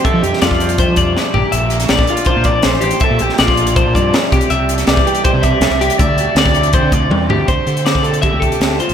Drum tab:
HH |x-x-x-xxx-x-----|x-xxx-xxx-x-x-xx|x-x-x-xxx-x-x-xx|x-xxx-xxx-x-x-xx|
SD |---oo-------o---|---oo-------o---|---oo-------o---|---oo-------o---|
T1 |----------------|----------------|----------------|----------------|
FT |--------------o-|----------------|----------------|----------------|
BD |o----o--o-o-----|-----o--o-o-----|o----o--o-o---o-|-----o--o-o-----|

HH |x-x-x-xxx-x-----|x-xxx-xxx-xxx-xx|
SD |----o-----------|----o-------o---|
T1 |------------o---|----------------|
FT |--------------o-|----------------|
BD |o----o--o-o-----|o----o--o-o-----|